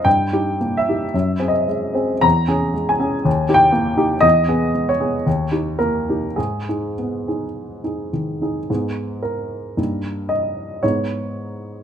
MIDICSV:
0, 0, Header, 1, 2, 480
1, 0, Start_track
1, 0, Key_signature, 5, "minor"
1, 0, Tempo, 1092896
1, 24, Time_signature, 2, 2, 24, 8
1, 984, Tempo, 1008403
1, 2424, Tempo, 1109057
1, 2904, Tempo, 1158301
1, 3864, Tempo, 1090909
1, 4344, Tempo, 1041667
1, 5288, End_track
2, 0, Start_track
2, 0, Title_t, "Grand piano"
2, 0, Program_c, 0, 0
2, 0, Control_c, 0, 64, 127
2, 20, Note_on_c, 0, 79, 72
2, 22, Note_on_c, 0, 43, 45
2, 32, Control_c, 0, 64, 0
2, 109, Control_c, 0, 64, 127
2, 140, Note_off_c, 0, 43, 0
2, 145, Note_on_c, 0, 63, 35
2, 146, Note_on_c, 0, 67, 39
2, 252, Note_off_c, 0, 63, 0
2, 253, Note_off_c, 0, 67, 0
2, 266, Note_on_c, 0, 58, 36
2, 340, Note_off_c, 0, 79, 0
2, 340, Note_on_c, 0, 76, 62
2, 389, Note_on_c, 0, 63, 32
2, 393, Note_on_c, 0, 67, 35
2, 453, Note_off_c, 0, 58, 0
2, 491, Note_off_c, 0, 63, 0
2, 493, Note_off_c, 0, 67, 0
2, 501, Note_on_c, 0, 42, 50
2, 505, Control_c, 0, 64, 0
2, 590, Control_c, 0, 64, 127
2, 612, Note_on_c, 0, 60, 35
2, 613, Note_on_c, 0, 68, 36
2, 615, Note_off_c, 0, 42, 0
2, 651, Note_on_c, 0, 75, 54
2, 656, Note_off_c, 0, 76, 0
2, 725, Note_off_c, 0, 60, 0
2, 726, Note_off_c, 0, 68, 0
2, 738, Note_on_c, 0, 56, 38
2, 853, Note_on_c, 0, 60, 37
2, 857, Note_on_c, 0, 68, 40
2, 935, Note_off_c, 0, 56, 0
2, 966, Note_off_c, 0, 60, 0
2, 968, Note_off_c, 0, 68, 0
2, 972, Note_on_c, 0, 82, 82
2, 976, Note_on_c, 0, 40, 53
2, 980, Note_off_c, 0, 75, 0
2, 993, Control_c, 0, 64, 0
2, 1077, Control_c, 0, 64, 127
2, 1099, Note_on_c, 0, 61, 40
2, 1099, Note_on_c, 0, 68, 45
2, 1102, Note_off_c, 0, 40, 0
2, 1213, Note_off_c, 0, 61, 0
2, 1213, Note_off_c, 0, 68, 0
2, 1221, Note_on_c, 0, 56, 45
2, 1293, Note_on_c, 0, 80, 64
2, 1305, Note_off_c, 0, 82, 0
2, 1343, Note_on_c, 0, 61, 38
2, 1346, Note_on_c, 0, 68, 43
2, 1416, Note_off_c, 0, 56, 0
2, 1452, Note_off_c, 0, 61, 0
2, 1454, Note_off_c, 0, 68, 0
2, 1464, Note_on_c, 0, 39, 57
2, 1476, Control_c, 0, 64, 0
2, 1561, Control_c, 0, 64, 127
2, 1579, Note_off_c, 0, 39, 0
2, 1579, Note_on_c, 0, 63, 39
2, 1579, Note_on_c, 0, 67, 44
2, 1604, Note_on_c, 0, 79, 81
2, 1614, Note_off_c, 0, 80, 0
2, 1686, Note_off_c, 0, 63, 0
2, 1686, Note_off_c, 0, 67, 0
2, 1690, Note_on_c, 0, 58, 51
2, 1807, Note_on_c, 0, 63, 42
2, 1811, Note_on_c, 0, 67, 49
2, 1883, Note_off_c, 0, 58, 0
2, 1918, Note_off_c, 0, 63, 0
2, 1919, Note_on_c, 0, 75, 89
2, 1920, Note_off_c, 0, 67, 0
2, 1925, Note_on_c, 0, 40, 55
2, 1926, Note_off_c, 0, 79, 0
2, 1944, Control_c, 0, 64, 0
2, 2022, Control_c, 0, 64, 127
2, 2046, Note_off_c, 0, 40, 0
2, 2051, Note_on_c, 0, 59, 43
2, 2054, Note_on_c, 0, 68, 47
2, 2162, Note_off_c, 0, 59, 0
2, 2163, Note_off_c, 0, 68, 0
2, 2178, Note_on_c, 0, 56, 42
2, 2245, Note_on_c, 0, 73, 63
2, 2249, Note_off_c, 0, 75, 0
2, 2298, Note_on_c, 0, 59, 38
2, 2301, Note_on_c, 0, 68, 42
2, 2374, Note_off_c, 0, 56, 0
2, 2410, Note_off_c, 0, 59, 0
2, 2412, Note_off_c, 0, 68, 0
2, 2423, Note_on_c, 0, 39, 53
2, 2429, Control_c, 0, 64, 0
2, 2507, Control_c, 0, 64, 127
2, 2533, Note_on_c, 0, 67, 38
2, 2535, Note_off_c, 0, 39, 0
2, 2535, Note_on_c, 0, 63, 34
2, 2642, Note_off_c, 0, 63, 0
2, 2642, Note_off_c, 0, 67, 0
2, 2649, Note_on_c, 0, 70, 63
2, 2650, Note_off_c, 0, 73, 0
2, 2654, Note_on_c, 0, 58, 40
2, 2783, Note_on_c, 0, 63, 31
2, 2783, Note_on_c, 0, 67, 35
2, 2852, Note_off_c, 0, 58, 0
2, 2893, Note_off_c, 0, 63, 0
2, 2894, Note_off_c, 0, 67, 0
2, 2898, Note_on_c, 0, 68, 48
2, 2900, Note_off_c, 0, 70, 0
2, 2906, Note_on_c, 0, 44, 38
2, 2911, Control_c, 0, 64, 0
2, 2989, Control_c, 0, 64, 127
2, 3023, Note_off_c, 0, 44, 0
2, 3029, Note_off_c, 0, 68, 0
2, 3034, Note_on_c, 0, 63, 27
2, 3035, Note_on_c, 0, 68, 31
2, 3139, Note_off_c, 0, 63, 0
2, 3140, Note_off_c, 0, 68, 0
2, 3156, Note_on_c, 0, 59, 28
2, 3280, Note_on_c, 0, 68, 30
2, 3282, Note_on_c, 0, 63, 27
2, 3344, Note_off_c, 0, 59, 0
2, 3496, Note_off_c, 0, 68, 0
2, 3497, Note_off_c, 0, 63, 0
2, 3511, Note_on_c, 0, 63, 26
2, 3516, Note_on_c, 0, 68, 29
2, 3617, Note_off_c, 0, 63, 0
2, 3620, Note_off_c, 0, 68, 0
2, 3632, Note_on_c, 0, 51, 30
2, 3750, Note_on_c, 0, 63, 26
2, 3754, Note_on_c, 0, 68, 28
2, 3819, Note_off_c, 0, 51, 0
2, 3853, Note_off_c, 0, 63, 0
2, 3855, Note_off_c, 0, 68, 0
2, 3868, Note_on_c, 0, 44, 35
2, 3868, Note_on_c, 0, 63, 25
2, 3868, Note_on_c, 0, 68, 27
2, 3870, Note_on_c, 0, 59, 28
2, 3871, Control_c, 0, 64, 0
2, 3941, Control_c, 0, 64, 127
2, 4099, Note_on_c, 0, 70, 45
2, 4330, Note_off_c, 0, 63, 0
2, 4330, Note_off_c, 0, 68, 0
2, 4331, Note_off_c, 0, 44, 0
2, 4332, Note_off_c, 0, 59, 0
2, 4340, Note_on_c, 0, 43, 32
2, 4340, Note_on_c, 0, 58, 25
2, 4340, Note_on_c, 0, 63, 28
2, 4351, Control_c, 0, 64, 0
2, 4444, Control_c, 0, 64, 127
2, 4577, Note_on_c, 0, 75, 53
2, 4584, Note_off_c, 0, 70, 0
2, 4811, Note_off_c, 0, 43, 0
2, 4811, Note_off_c, 0, 58, 0
2, 4811, Note_off_c, 0, 63, 0
2, 4822, Note_off_c, 0, 75, 0
2, 4825, Note_on_c, 0, 73, 57
2, 4829, Note_on_c, 0, 56, 28
2, 4829, Note_on_c, 0, 59, 28
2, 4829, Note_on_c, 0, 63, 31
2, 4832, Note_on_c, 0, 44, 32
2, 4833, Control_c, 0, 64, 0
2, 4916, Control_c, 0, 64, 127
2, 5288, Note_off_c, 0, 44, 0
2, 5288, Note_off_c, 0, 56, 0
2, 5288, Note_off_c, 0, 59, 0
2, 5288, Note_off_c, 0, 63, 0
2, 5288, Note_off_c, 0, 73, 0
2, 5288, End_track
0, 0, End_of_file